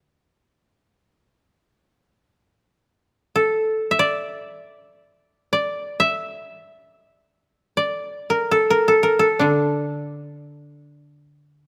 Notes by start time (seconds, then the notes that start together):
Already playing: D3
3.36 A4
3.91 E5
3.99 D5
5.53 D5
6.00 E5
6.92 D#5
7.14 D5
7.77 D5
8.30 A#4
8.51 A4
8.70 A#4
8.88 A4
9.03 A#4
9.19 A4
9.39 D3 D4